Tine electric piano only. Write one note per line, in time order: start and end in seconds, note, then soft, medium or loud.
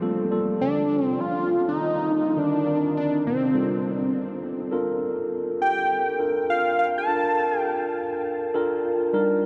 0.01 0.26 G3 medium
0.01 0.26 A#3 medium
0.01 0.26 F4 medium
0.01 0.26 A4 loud
0.31 1.19 G3 medium
0.31 1.19 A#3 medium
0.31 1.19 F4 medium
0.31 1.19 A4 loud
2.36 2.61 D#3 medium
2.36 2.61 C4 medium
2.36 2.61 D4 medium
2.36 2.62 A#4 medium
2.65 3.54 D#3 medium
2.65 3.54 C4 medium
2.65 3.54 D4 medium
2.65 3.55 A#4 medium
3.54 4.50 G3 medium
3.54 3.63 B3 medium
3.54 4.51 F4 medium
3.54 4.51 A4 medium
3.61 4.54 C4 medium
4.71 5.60 D4 medium
4.71 5.60 F4 medium
4.71 5.60 A4 medium
4.71 5.60 A#4 loud
6.19 6.87 D4 medium
6.19 6.87 F4 medium
6.19 6.87 A4 medium
6.19 6.88 A#4 medium
7.08 7.96 D4 medium
7.08 7.96 F4 medium
7.08 7.17 A4 medium
7.15 7.99 A#4 medium
8.54 9.12 D4 medium
8.54 9.14 F4 medium
8.54 9.13 A4 loud
8.54 9.13 A#4 loud
9.13 9.46 G3 loud
9.13 9.46 D4 medium
9.13 9.46 D#4 medium
9.13 9.46 A#4 loud